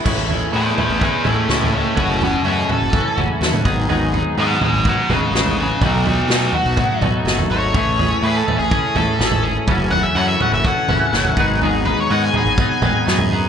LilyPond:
<<
  \new Staff \with { instrumentName = "Lead electric guitar" } { \time 4/4 \key a \lydian \tempo 4 = 124 r4 <gis' e''>8 <gis' e''>8 <gis' e''>8 <e' cis''>8 <e' cis''>8 <e' cis''>8 | <fis' b'>8 <fis' b'>8 <fis' b'>8 a'4 r4. | r4 <dis'' fis''>8 <dis'' fis''>8 <dis'' fis''>8 <gis' cis''>8 <gis' cis''>8 <gis' cis''>8 | <dis' b'>8 <dis' b'>8 <dis' b'>8 fis'4 r4 cis''8~ |
cis''4 b'16 a'8 gis'8. a'4 r8 | r8 fis''16 e''16 fis''16 e''16 fis''16 e''16 fis''2 | r8 b'16 cis''16 fis''16 gis''16 gis''2 r8 | }
  \new Staff \with { instrumentName = "Clean electric guitar" } { \time 4/4 \key a \lydian <a, e gis cis' e'>8 <gis cis' e'>8 <a, e gis cis' e'>8 <gis cis' e'>8 <e gis cis' e'>8 <a, e gis cis' e'>8 <e gis cis' e'>8 <gis cis' e'>8 | <fis, cis e a cis' fis'>8 <e a cis' fis'>8 <fis, cis e a cis' fis'>8 <e a cis' fis'>8 <e a cis' fis'>8 <fis, cis e a cis' fis'>8 <e a cis' fis'>8 <gis, dis fis b dis' gis'>8 | <gis, dis fis b dis' gis'>8 <fis b dis' gis'>8 <gis, dis fis b dis' gis'>8 <fis b dis' gis'>8 <fis b dis' gis'>8 <gis, dis fis b dis' gis'>8 <fis b dis' gis'>8 <fis b dis' gis'>8 | <b, fis a dis' fis'>8 <a dis' fis'>8 <b, fis a dis' fis'>8 <a dis' fis'>8 <fis a dis' fis'>8 <b, fis a dis' fis'>8 <fis a dis' fis'>8 <a dis' fis'>8 |
<a, e a cis' gis'>8 <a cis' gis'>8 <a, e a cis' gis'>8 <a cis' gis'>8 <e a cis' gis'>8 <a, e a cis' gis'>8 <e a cis' gis'>8 <a cis' gis'>8 | <fis, cis e a cis' fis'>8 <e a cis' fis'>8 <fis, cis e a cis' fis'>8 <e a cis' fis'>8 <e a cis' fis'>8 <fis, cis e a cis' fis'>8 <e a cis' fis'>8 <gis, dis fis b dis' gis'>8 | <gis, dis fis b dis' gis'>8 <fis b dis' gis'>8 <gis, dis fis b dis' gis'>8 <fis b dis' gis'>8 <fis b dis' gis'>8 <gis, dis fis b dis' gis'>8 <fis b dis' gis'>8 <fis b dis' gis'>8 | }
  \new Staff \with { instrumentName = "Fingered electric bass" } { \clef bass \time 4/4 \key a \lydian a,,4 a,8 r16 a,,8 r16 a,,16 r16 cis,4 | fis,,4 fis,8 r16 fis,,8 r16 fis,,16 r16 dis,8 gis,,8~ | gis,,4 gis,8 r16 gis,,8 r16 gis,,16 r16 a,,4 | b,,4 b,8 r16 b,,8 r16 b,,16 r16 fis,,8 gis,,8 |
a,,4 a,8 r16 a,,8 r16 a,,16 r16 gis,,4 | fis,,4 fis,8 r16 fis,,8 r16 fis,,16 r16 fis,,8 gis,,8~ | gis,,4 gis,8 r16 gis,,8 r16 gis,,16 r16 fis,4 | }
  \new DrumStaff \with { instrumentName = "Drums" } \drummode { \time 4/4 <cymc bd tomfh>8 tomfh8 r8 <tomfh toml>8 bd8 <tomfh toml>8 sn16 <tomfh toml>8. | <bd tomfh>8 tomfh8 r8 <tomfh toml>8 bd8 <tomfh toml>8 sn16 <tomfh toml>16 bd8 | tomfh8 tomfh8 r8 <tomfh toml>8 bd8 <tomfh toml>8 sn16 <tomfh toml>8. | <bd tomfh>8 tomfh8 sn8 tomfh8 <bd toml>8 <tomfh toml>8 sn16 tomfh8. |
<bd tomfh>8 tomfh8 r8 <tomfh toml>8 bd8 <tomfh toml>8 sn16 <tomfh toml>8. | <bd tomfh>8 tomfh8 r8 <tomfh toml>8 bd8 <tomfh toml>8 sn16 <tomfh toml>16 bd8 | tomfh8 tomfh8 r8 <tomfh toml>8 bd8 <tomfh toml>8 sn16 <tomfh toml>8. | }
>>